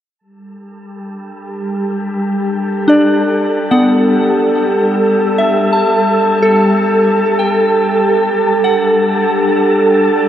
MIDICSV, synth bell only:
0, 0, Header, 1, 2, 480
1, 0, Start_track
1, 0, Key_signature, 1, "major"
1, 0, Tempo, 500000
1, 9876, End_track
2, 0, Start_track
2, 0, Title_t, "Synth bell"
2, 0, Program_c, 0, 98
2, 383, Control_c, 0, 64, 127
2, 2761, Note_on_c, 0, 62, 65
2, 2777, Note_on_c, 0, 74, 41
2, 3564, Note_on_c, 0, 78, 51
2, 3566, Note_on_c, 0, 59, 53
2, 3717, Note_off_c, 0, 62, 0
2, 3732, Note_off_c, 0, 74, 0
2, 5167, Note_on_c, 0, 76, 48
2, 5328, Note_off_c, 0, 78, 0
2, 5495, Note_on_c, 0, 81, 44
2, 6166, Note_on_c, 0, 69, 66
2, 6176, Note_off_c, 0, 59, 0
2, 7092, Note_on_c, 0, 79, 42
2, 7244, Note_off_c, 0, 81, 0
2, 7781, Note_off_c, 0, 76, 0
2, 8296, Note_on_c, 0, 78, 52
2, 8450, Note_off_c, 0, 79, 0
2, 8786, Note_off_c, 0, 69, 0
2, 9876, Note_off_c, 0, 78, 0
2, 9876, End_track
0, 0, End_of_file